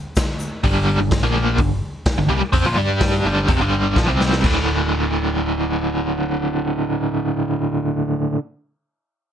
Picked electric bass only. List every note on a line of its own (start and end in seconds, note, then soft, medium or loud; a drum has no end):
0.63 0.97 G1 medium
0.98 1.21 G1 medium
1.22 1.56 A#1 medium
1.58 1.81 G1 medium
2.16 2.28 G1 medium
2.29 2.40 C2 medium
2.41 muted picked electric bass stroke soft
2.53 2.63 F2 medium
2.64 2.75 A#1 medium
2.75 3.20 G2 medium
3.23 3.46 G1 medium
3.48 3.59 F1 medium
3.60 3.93 G1 medium
3.96 4.07 A#1 medium
4.08 4.41 C2 medium
4.44 8.31 D1 medium